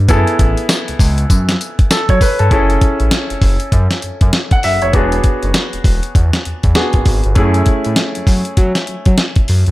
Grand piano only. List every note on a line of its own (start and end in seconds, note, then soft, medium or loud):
0.08 2.47 B3 medium
0.08 2.47 E4 medium
0.08 1.88 G#4 medium
0.08 1.88 A4 medium
1.91 2.09 A4 medium
2.10 2.21 C#5 medium
2.22 2.39 B4 medium
2.39 2.51 A4 medium
2.50 4.89 C#4 medium
2.50 4.90 E4 medium
2.50 4.90 G#4 medium
2.50 4.90 A4 medium
4.52 4.63 F#5 medium
4.64 4.81 E5 medium
4.82 5.11 C#5 medium
4.93 6.71 B3 medium
4.93 6.72 D4 medium
4.93 6.72 F#4 medium
4.93 6.73 G#4 medium
6.75 7.36 B3 medium
6.75 7.36 D4 soft
6.75 7.36 F#4 medium
6.75 7.36 G#4 medium
7.35 9.71 A3 medium
7.35 9.71 C#4 medium
7.35 9.71 E4 medium
7.35 9.71 G#4 medium